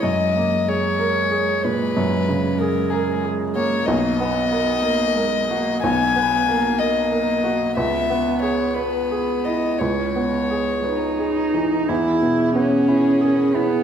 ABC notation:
X:1
M:6/8
L:1/8
Q:3/8=61
K:C#dor
V:1 name="Violin"
d2 c3 B- | B2 A G z c | d6 | g3 d3 |
e2 c B2 d | c4- c z | z3 G A B |]
V:2 name="Viola"
z6 | z6 | z6 | z6 |
z6 | z6 | G6 |]
V:3 name="Felt piano"
F,, A, G A G A,, | F,, C, G A G A, | B,,, B, A A A F | B,,, B, A A A F |
C,, B, G B G E | C,, B, G B G E, | E,, B,, B, E G E |]
V:4 name="Cello"
G,6- | G,6 | A, B, B, A, G, A, | B, B, A, A,3 |
B,3 B,3 | G,3 D3 | E2 C3 B, |]